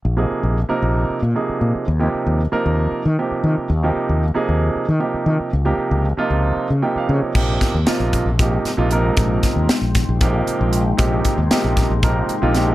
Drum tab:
CC |-------|-------|-------|-------|
HH |-------|-------|-------|-------|
SD |-------|-------|-------|-------|
BD |-------|-------|-------|-------|

CC |x------|-------|-------|
HH |-xxxxxx|xxxxxxx|xxxxxxx|
SD |-oo--o-|-ooo---|--oo--o|
BD |oo-oo--|oo-oo--|oo-oo--|